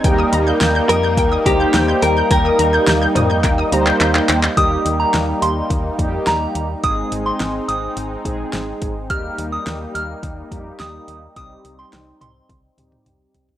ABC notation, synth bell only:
X:1
M:4/4
L:1/16
Q:1/4=106
K:Eb
V:1 name="Synth bell"
z16 | z16 | e'2 z b2 z c' z4 z b3 z | e'2 z c'2 z e' z8 z |
f'2 z e'2 z f' z4 z e'3 z | e'2 z c'2 z c' z8 z |]